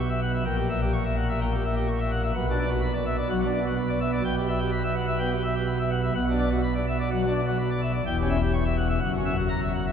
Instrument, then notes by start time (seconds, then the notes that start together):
pipe organ
Already playing: B1 B2
0.09 E5
0.22 F#5
0.34 E5
0.45 A#1 A#2 G5
0.57 G4
0.69 E5
0.81 G4
0.93 C#6
1.05 E5
1.17 F#5
1.29 E5
1.41 A#3 G5
1.52 G4
1.65 E5
1.76 G4
1.88 C#6
2.00 E5
2.11 F#5
2.23 E5
2.35 B1 B2 F#5
2.47 D4 F#4
2.58 D5
2.70 F#4
2.82 B5
2.93 D5
3.06 E5
3.17 D5
3.30 F#3 F#5
3.42 D4 F#4
3.54 D5
3.66 F#4
3.77 B5
3.89 D5
4.00 E5
4.12 D5
4.24 B1 B2 G5
4.37 G4
4.48 E5
4.60 G4
4.71 B5
4.83 E5
4.96 F#5
5.07 E5
5.19 B3 G5
5.31 G4
5.44 E5
5.56 G4
5.67 B5
5.79 E5
5.91 F#5
6.03 E5
6.14 B1 B2 F#5
6.27 D4 F#4
6.39 D5
6.51 F#4
6.63 B5
6.75 D5
6.87 E5
6.99 D5
7.11 F#3 F#5
7.23 F#4
7.27 D4
7.35 D5
7.47 F#4
7.59 B5
7.70 D5
7.82 E5
7.94 D5
8.06 E1 E2 G5
8.18 G4
8.22 C#4
8.30 E5
8.42 G4
8.53 C#6
8.65 E5
8.77 F#5
8.89 E5
9.00 F#1 F#2 F#5
9.13 F#4
9.17 C#4
9.25 E5
9.37 F#4
9.49 A#5
9.62 E5
9.74 F#5
9.86 E5